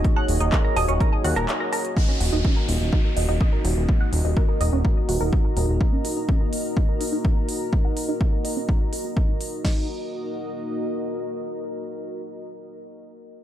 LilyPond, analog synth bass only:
\new Staff \with { instrumentName = "Analog synth bass" } { \clef bass \time 4/4 \key ges \major \tempo 4 = 125 r8 ees,,16 ees,,16 r8 ees,,16 ees,,16 r8 ees,16 ees,,16 r4 | r8 ees,,16 ees,,16 r8 ees,,16 ees,,16 r8 ees,,16 ees,,16 r8 ees,,16 ees,,16 | r8 ees,,16 ees,,16 r8 ees,,16 ees,,16 r8 ees,,16 ees,,16 r8 ees,,16 ees,,16 | r1 |
r1 | r1 | r1 | }